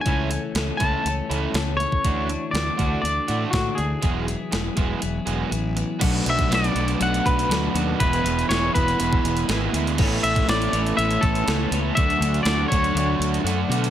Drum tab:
CC |----------------|----------------|----------------|x---------------|
HH |x-x-x-x-x-x-x-x-|x-x-x-x-x-x-x-x-|x-x-x-x-x-x-x-x-|x-xxxxxxxxxxx-x-|
SD |----o-------o---|----o-------o---|----o-----------|----o-------o---|
BD |o-----o--------o|o-----o-----o---|o-----o---------|o--o------o-----|

CC |----------------|x---------------|----------------|
HH |xxxxx-xxx-xxx-xx|--xxxxxxxxxxx-x-|xxxxx-xxx-xxx-xx|
SD |----o-------o---|----o-------o---|----o-----------|
BD |o-----o--o------|o--o------o-----|o-----o---------|